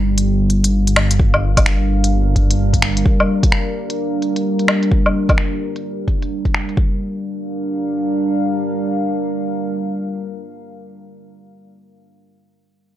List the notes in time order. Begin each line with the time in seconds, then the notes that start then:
Already playing: G1 G3 F5
0.00 D4
0.18 closed hi-hat
0.32 A#4
0.50 closed hi-hat
0.64 closed hi-hat
0.87 closed hi-hat
0.96 finger snap, low woodblock
1.11 closed hi-hat
1.20 kick
1.34 low woodblock
1.57 kick, closed hi-hat, low woodblock
1.66 finger snap
2.04 closed hi-hat
2.36 kick, closed hi-hat
2.51 closed hi-hat
2.73 kick, closed hi-hat
2.82 finger snap
2.97 closed hi-hat
3.06 kick
3.20 low woodblock
3.43 kick, closed hi-hat
3.52 finger snap
3.90 closed hi-hat
4.22 closed hi-hat
4.36 closed hi-hat
4.59 closed hi-hat
4.68 finger snap, low woodblock
4.83 closed hi-hat
4.91 kick
5.06 low woodblock
5.29 kick, closed hi-hat, low woodblock
5.38 finger snap
5.76 closed hi-hat
6.08 kick, closed hi-hat
6.22 closed hi-hat
6.45 kick, closed hi-hat
6.54 finger snap
6.69 closed hi-hat
6.77 G3, kick
6.86 D4
6.94 A#4
6.99 F5